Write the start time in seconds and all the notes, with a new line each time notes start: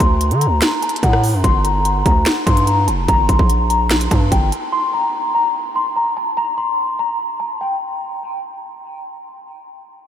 0.00 D2 C6, kick, closed hi-hat
0.21 closed hi-hat
0.31 D3, closed hi-hat
0.41 A#5, closed hi-hat
0.47 D2
0.62 snare, closed hi-hat
0.82 A5, closed hi-hat
0.89 closed hi-hat
0.96 closed hi-hat
1.03 A2 F#5, kick, cross-stick, closed hi-hat
1.13 cross-stick
1.24 open hi-hat
1.34 F#2
1.44 G1 C6, kick, closed hi-hat
1.64 A#5, closed hi-hat
1.85 closed hi-hat
2.06 D2 A#5, kick, closed hi-hat
2.26 snare, closed hi-hat
2.46 G2 C6, kick, closed hi-hat
2.57 closed hi-hat
2.67 A#5, closed hi-hat
2.88 F1 A5, closed hi-hat
3.08 G1 A#5, kick, closed hi-hat
3.29 G1 C6, kick, closed hi-hat
3.39 A#1, kick
3.50 closed hi-hat
3.70 A#5, closed hi-hat
3.91 snare, closed hi-hat
4.01 closed hi-hat
4.11 G2 A5, kick, closed hi-hat
4.32 G1 G5, kick, closed hi-hat
4.52 A5, closed hi-hat
4.72 C6
4.94 A#5
5.35 A#5
5.76 C6
5.96 A#5
6.17 A5
6.37 A#5
6.58 C6
6.99 A#5
7.40 A5
7.61 G5